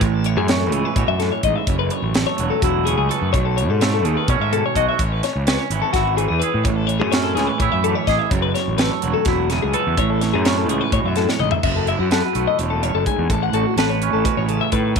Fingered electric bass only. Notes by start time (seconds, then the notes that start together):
0.01 A1
0.37 F#2
0.71 C#2
0.96 A2
1.08 F#2
1.43 A1
1.68 F#1
2.02 A1
2.39 E1
2.62 E1
2.98 C#2
3.21 F#2
3.34 B1
3.69 G#2
4.05 D#2
4.28 B2
4.40 G#2
4.76 B1
5.00 A1
5.35 C#2
5.70 G#1
5.94 G#1
6.30 E2
6.54 A2
6.65 A1
7.01 F#2
7.38 C#2
7.60 A2
7.73 F#2
8.07 A1
8.31 F#1
8.68 A1
9.03 E1
9.26 E1
9.64 C#2
9.87 E2
9.98 A1
10.35 F#2
10.70 C#2
10.92 A2
11.04 F#2
11.40 A1
11.63 F#1
11.99 F#2
12.35 B1
12.59 E1
12.94 F#1
13.18 E2
13.30 A1
13.53 A1
13.76 A1
14.13 A1
14.37 A1
14.72 A2
14.96 E1